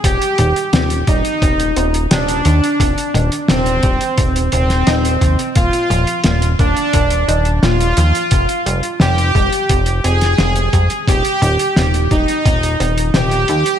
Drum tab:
HH |xxxxxxxxxxxxxxxx|xxxxxxxxxxxxxxxx|xxxxxxxxxxxxxxxx|xxxxxxxxxxxxxxxx|
SD |----o-------o---|----o------oo---|----o-------o---|----o------oo---|
T2 |--o-------------|--o-------------|--o-------------|----------------|
BD |o-----o-o-------|o-----o-o-----o-|o-----o-o-------|o-----o-o-----o-|

HH |xxxxxxxxxxxxxxxx|
SD |----o-------o---|
T2 |--o-------------|
BD |o-----o-o-------|